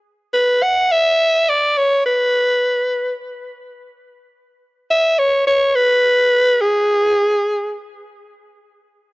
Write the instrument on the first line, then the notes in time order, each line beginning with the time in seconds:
alto saxophone
0.34 B4
0.63 F#5
0.92 E5
1.49 D5
1.78 C#5
2.06 B4
4.91 E5
5.19 C#5
5.47 C#5
5.75 B4
6.61 G#4